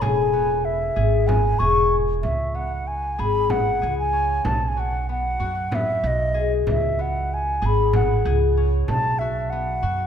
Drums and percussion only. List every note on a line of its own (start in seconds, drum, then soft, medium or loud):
0.02 frame drum medium
0.34 frame drum soft
0.65 frame drum soft
0.96 frame drum soft
1.29 frame drum medium
1.61 frame drum soft
2.23 frame drum soft
3.50 frame drum medium
4.45 frame drum medium
5.72 frame drum medium
6.67 frame drum medium
7.93 frame drum medium
8.88 frame drum medium